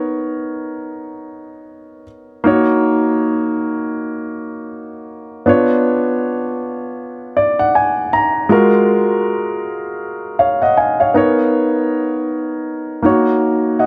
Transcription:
0, 0, Header, 1, 2, 480
1, 0, Start_track
1, 0, Key_signature, -6, "minor"
1, 0, Tempo, 755668
1, 1561, Time_signature, 4, 2, 24, 8
1, 8805, End_track
2, 0, Start_track
2, 0, Title_t, "Grand piano"
2, 0, Program_c, 0, 0
2, 0, Control_c, 0, 64, 127
2, 0, Note_on_c, 0, 59, 63
2, 0, Note_on_c, 0, 63, 57
2, 0, Note_on_c, 0, 70, 62
2, 0, Note_on_c, 0, 73, 75
2, 1291, Note_off_c, 0, 59, 0
2, 1295, Note_off_c, 0, 63, 0
2, 1298, Note_off_c, 0, 70, 0
2, 1301, Note_off_c, 0, 73, 0
2, 1548, Note_on_c, 0, 58, 68
2, 1557, Note_on_c, 0, 63, 64
2, 1564, Note_on_c, 0, 66, 61
2, 1569, Control_c, 0, 64, 0
2, 1570, Note_on_c, 0, 73, 75
2, 1664, Control_c, 0, 64, 127
2, 3450, Note_off_c, 0, 58, 0
2, 3454, Note_off_c, 0, 63, 0
2, 3457, Note_off_c, 0, 66, 0
2, 3460, Note_off_c, 0, 73, 0
2, 3468, Note_on_c, 0, 59, 64
2, 3475, Note_on_c, 0, 62, 63
2, 3479, Note_on_c, 0, 65, 60
2, 3488, Note_on_c, 0, 73, 73
2, 3491, Control_c, 0, 64, 0
2, 3582, Control_c, 0, 64, 127
2, 4679, Note_on_c, 0, 74, 69
2, 4810, Note_off_c, 0, 74, 0
2, 4824, Note_on_c, 0, 78, 68
2, 4916, Note_off_c, 0, 78, 0
2, 4925, Note_on_c, 0, 80, 62
2, 5147, Note_off_c, 0, 80, 0
2, 5165, Note_on_c, 0, 82, 68
2, 5370, Note_off_c, 0, 59, 0
2, 5373, Note_off_c, 0, 62, 0
2, 5376, Note_off_c, 0, 65, 0
2, 5380, Note_off_c, 0, 73, 0
2, 5387, Note_off_c, 0, 82, 0
2, 5394, Note_on_c, 0, 56, 68
2, 5400, Note_on_c, 0, 65, 62
2, 5405, Note_on_c, 0, 66, 64
2, 5412, Control_c, 0, 64, 0
2, 5413, Note_on_c, 0, 70, 82
2, 5507, Control_c, 0, 64, 127
2, 6600, Note_on_c, 0, 77, 57
2, 6606, Note_on_c, 0, 73, 51
2, 6734, Note_off_c, 0, 77, 0
2, 6737, Note_off_c, 0, 73, 0
2, 6744, Note_on_c, 0, 78, 57
2, 6750, Note_on_c, 0, 75, 53
2, 6839, Note_off_c, 0, 78, 0
2, 6842, Note_off_c, 0, 75, 0
2, 6843, Note_on_c, 0, 80, 57
2, 6847, Note_on_c, 0, 77, 46
2, 6976, Note_off_c, 0, 80, 0
2, 6978, Note_off_c, 0, 77, 0
2, 6987, Note_on_c, 0, 77, 59
2, 6990, Note_on_c, 0, 73, 55
2, 7054, Note_off_c, 0, 56, 0
2, 7057, Note_off_c, 0, 65, 0
2, 7060, Note_off_c, 0, 66, 0
2, 7064, Note_off_c, 0, 70, 0
2, 7077, Note_on_c, 0, 59, 63
2, 7083, Note_on_c, 0, 63, 63
2, 7087, Note_off_c, 0, 73, 0
2, 7087, Note_on_c, 0, 70, 61
2, 7092, Control_c, 0, 64, 0
2, 7096, Note_on_c, 0, 73, 79
2, 7213, Note_off_c, 0, 77, 0
2, 7216, Control_c, 0, 64, 127
2, 8258, Note_off_c, 0, 59, 0
2, 8261, Note_off_c, 0, 63, 0
2, 8263, Note_off_c, 0, 70, 0
2, 8268, Note_off_c, 0, 73, 0
2, 8273, Note_on_c, 0, 58, 59
2, 8282, Note_on_c, 0, 63, 51
2, 8288, Note_on_c, 0, 66, 60
2, 8292, Control_c, 0, 64, 0
2, 8294, Note_on_c, 0, 73, 64
2, 8404, Control_c, 0, 64, 127
2, 8762, Note_on_c, 0, 78, 52
2, 8765, Note_on_c, 0, 75, 48
2, 8805, Note_off_c, 0, 58, 0
2, 8805, Note_off_c, 0, 63, 0
2, 8805, Note_off_c, 0, 66, 0
2, 8805, Note_off_c, 0, 73, 0
2, 8805, Note_off_c, 0, 75, 0
2, 8805, Note_off_c, 0, 78, 0
2, 8805, End_track
0, 0, End_of_file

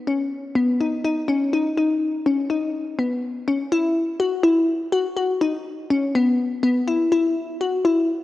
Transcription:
0, 0, Header, 1, 2, 480
1, 0, Start_track
1, 0, Tempo, 485830
1, 313, Time_signature, 7, 3, 24, 8
1, 8138, End_track
2, 0, Start_track
2, 0, Title_t, "Synth arpeggio sound"
2, 0, Program_c, 0, 84
2, 72, Note_on_c, 0, 61, 61
2, 224, Note_off_c, 0, 61, 0
2, 547, Note_on_c, 0, 59, 69
2, 700, Note_off_c, 0, 59, 0
2, 795, Note_on_c, 0, 63, 63
2, 946, Note_off_c, 0, 63, 0
2, 1032, Note_on_c, 0, 63, 75
2, 1185, Note_off_c, 0, 63, 0
2, 1266, Note_on_c, 0, 61, 69
2, 1421, Note_off_c, 0, 61, 0
2, 1513, Note_on_c, 0, 63, 73
2, 1666, Note_off_c, 0, 63, 0
2, 1753, Note_on_c, 0, 63, 64
2, 2057, Note_off_c, 0, 63, 0
2, 2235, Note_on_c, 0, 61, 69
2, 2387, Note_off_c, 0, 61, 0
2, 2470, Note_on_c, 0, 63, 66
2, 2775, Note_off_c, 0, 63, 0
2, 2952, Note_on_c, 0, 59, 66
2, 3257, Note_off_c, 0, 59, 0
2, 3436, Note_on_c, 0, 61, 68
2, 3588, Note_off_c, 0, 61, 0
2, 3676, Note_on_c, 0, 64, 93
2, 3980, Note_off_c, 0, 64, 0
2, 4148, Note_on_c, 0, 66, 75
2, 4303, Note_off_c, 0, 66, 0
2, 4382, Note_on_c, 0, 64, 82
2, 4690, Note_off_c, 0, 64, 0
2, 4865, Note_on_c, 0, 66, 83
2, 5021, Note_off_c, 0, 66, 0
2, 5104, Note_on_c, 0, 66, 73
2, 5260, Note_off_c, 0, 66, 0
2, 5348, Note_on_c, 0, 63, 87
2, 5654, Note_off_c, 0, 63, 0
2, 5833, Note_on_c, 0, 61, 76
2, 5986, Note_off_c, 0, 61, 0
2, 6077, Note_on_c, 0, 59, 86
2, 6380, Note_off_c, 0, 59, 0
2, 6551, Note_on_c, 0, 59, 81
2, 6704, Note_off_c, 0, 59, 0
2, 6793, Note_on_c, 0, 64, 75
2, 6945, Note_off_c, 0, 64, 0
2, 7034, Note_on_c, 0, 64, 95
2, 7337, Note_off_c, 0, 64, 0
2, 7517, Note_on_c, 0, 66, 80
2, 7668, Note_off_c, 0, 66, 0
2, 7754, Note_on_c, 0, 64, 90
2, 8057, Note_off_c, 0, 64, 0
2, 8138, End_track
0, 0, End_of_file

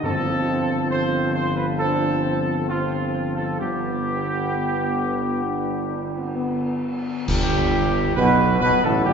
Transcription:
0, 0, Header, 1, 7, 480
1, 0, Start_track
1, 0, Tempo, 883652
1, 18, Time_signature, 4, 2, 24, 8
1, 1458, Tempo, 920245
1, 3858, Tempo, 890208
1, 4854, End_track
2, 0, Start_track
2, 0, Title_t, "Trumpet section"
2, 0, Program_c, 0, 61
2, 19, Note_on_c, 0, 69, 98
2, 473, Note_off_c, 0, 69, 0
2, 494, Note_on_c, 0, 72, 95
2, 716, Note_off_c, 0, 72, 0
2, 730, Note_on_c, 0, 72, 94
2, 843, Note_off_c, 0, 72, 0
2, 848, Note_on_c, 0, 71, 74
2, 903, Note_off_c, 0, 71, 0
2, 969, Note_on_c, 0, 69, 99
2, 1434, Note_off_c, 0, 69, 0
2, 1454, Note_on_c, 0, 65, 84
2, 1793, Note_off_c, 0, 65, 0
2, 1816, Note_on_c, 0, 69, 71
2, 1928, Note_off_c, 0, 69, 0
2, 1934, Note_on_c, 0, 67, 87
2, 3594, Note_off_c, 0, 67, 0
2, 3852, Note_on_c, 0, 67, 108
2, 4313, Note_off_c, 0, 67, 0
2, 4332, Note_on_c, 0, 71, 91
2, 4557, Note_off_c, 0, 71, 0
2, 4571, Note_on_c, 0, 71, 102
2, 4685, Note_off_c, 0, 71, 0
2, 4698, Note_on_c, 0, 69, 85
2, 4807, Note_on_c, 0, 67, 110
2, 4816, Note_off_c, 0, 69, 0
2, 4854, Note_off_c, 0, 67, 0
2, 4854, End_track
3, 0, Start_track
3, 0, Title_t, "French horn section"
3, 0, Program_c, 1, 60
3, 21, Note_on_c, 1, 60, 77
3, 952, Note_off_c, 1, 60, 0
3, 985, Note_on_c, 1, 62, 64
3, 1204, Note_off_c, 1, 62, 0
3, 1212, Note_on_c, 1, 60, 60
3, 1387, Note_off_c, 1, 60, 0
3, 1455, Note_on_c, 1, 60, 68
3, 1915, Note_off_c, 1, 60, 0
3, 1935, Note_on_c, 1, 59, 53
3, 2370, Note_off_c, 1, 59, 0
3, 2419, Note_on_c, 1, 59, 67
3, 2877, Note_off_c, 1, 59, 0
3, 2896, Note_on_c, 1, 62, 65
3, 3130, Note_off_c, 1, 62, 0
3, 3136, Note_on_c, 1, 62, 67
3, 3190, Note_off_c, 1, 62, 0
3, 3265, Note_on_c, 1, 60, 65
3, 3317, Note_off_c, 1, 60, 0
3, 3374, Note_on_c, 1, 59, 73
3, 3834, Note_off_c, 1, 59, 0
3, 3856, Note_on_c, 1, 55, 85
3, 4315, Note_off_c, 1, 55, 0
3, 4337, Note_on_c, 1, 59, 89
3, 4559, Note_off_c, 1, 59, 0
3, 4577, Note_on_c, 1, 59, 88
3, 4688, Note_off_c, 1, 59, 0
3, 4700, Note_on_c, 1, 57, 87
3, 4753, Note_off_c, 1, 57, 0
3, 4814, Note_on_c, 1, 55, 87
3, 4854, Note_off_c, 1, 55, 0
3, 4854, End_track
4, 0, Start_track
4, 0, Title_t, "Trombone section"
4, 0, Program_c, 2, 61
4, 37, Note_on_c, 2, 53, 69
4, 38, Note_on_c, 2, 60, 74
4, 414, Note_off_c, 2, 53, 0
4, 414, Note_off_c, 2, 60, 0
4, 506, Note_on_c, 2, 53, 66
4, 509, Note_on_c, 2, 60, 68
4, 957, Note_off_c, 2, 53, 0
4, 958, Note_off_c, 2, 60, 0
4, 977, Note_on_c, 2, 60, 69
4, 978, Note_on_c, 2, 53, 66
4, 1438, Note_off_c, 2, 53, 0
4, 1438, Note_off_c, 2, 60, 0
4, 1452, Note_on_c, 2, 60, 62
4, 1453, Note_on_c, 2, 53, 64
4, 1914, Note_off_c, 2, 53, 0
4, 1914, Note_off_c, 2, 60, 0
4, 1936, Note_on_c, 2, 59, 64
4, 1937, Note_on_c, 2, 50, 59
4, 3663, Note_off_c, 2, 50, 0
4, 3683, Note_off_c, 2, 59, 0
4, 3853, Note_on_c, 2, 43, 73
4, 4313, Note_off_c, 2, 43, 0
4, 4335, Note_on_c, 2, 47, 95
4, 4559, Note_off_c, 2, 47, 0
4, 4579, Note_on_c, 2, 47, 96
4, 4689, Note_off_c, 2, 47, 0
4, 4693, Note_on_c, 2, 45, 76
4, 4805, Note_off_c, 2, 45, 0
4, 4827, Note_on_c, 2, 43, 81
4, 4854, Note_off_c, 2, 43, 0
4, 4854, End_track
5, 0, Start_track
5, 0, Title_t, "Timpani"
5, 0, Program_c, 3, 47
5, 18, Note_on_c, 3, 43, 102
5, 711, Note_off_c, 3, 43, 0
5, 4854, End_track
6, 0, Start_track
6, 0, Title_t, "Tuba"
6, 0, Program_c, 4, 58
6, 18, Note_on_c, 4, 31, 72
6, 1916, Note_off_c, 4, 31, 0
6, 1940, Note_on_c, 4, 31, 60
6, 3664, Note_off_c, 4, 31, 0
6, 3850, Note_on_c, 4, 31, 91
6, 4312, Note_off_c, 4, 31, 0
6, 4331, Note_on_c, 4, 35, 94
6, 4556, Note_off_c, 4, 35, 0
6, 4572, Note_on_c, 4, 35, 94
6, 4627, Note_off_c, 4, 35, 0
6, 4697, Note_on_c, 4, 33, 84
6, 4807, Note_off_c, 4, 33, 0
6, 4814, Note_on_c, 4, 31, 74
6, 4854, Note_off_c, 4, 31, 0
6, 4854, End_track
7, 0, Start_track
7, 0, Title_t, "Drums"
7, 3856, Note_on_c, 9, 35, 88
7, 3856, Note_on_c, 9, 49, 79
7, 3910, Note_off_c, 9, 35, 0
7, 3910, Note_off_c, 9, 49, 0
7, 4854, End_track
0, 0, End_of_file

